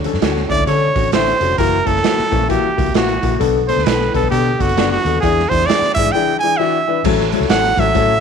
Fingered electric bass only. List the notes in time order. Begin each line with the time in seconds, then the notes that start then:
0.14 F#2
0.22 D2
0.50 D2
0.67 D3
0.96 A1
1.41 F1
1.58 F#1
1.87 F#1
2.19 muted fingered electric bass stroke
2.32 A#1
2.79 C#2
2.86 C#2
2.94 A1
3.23 A#1
3.40 B1
3.76 D2
3.86 B1
4.14 B1
4.32 B2
4.60 F#1
5.05 D#2
5.23 E2
5.51 E2
5.81 muted fingered electric bass stroke
5.96 G#2
7.04 A1
7.40 C#2
7.49 A1
7.77 A1
7.95 A2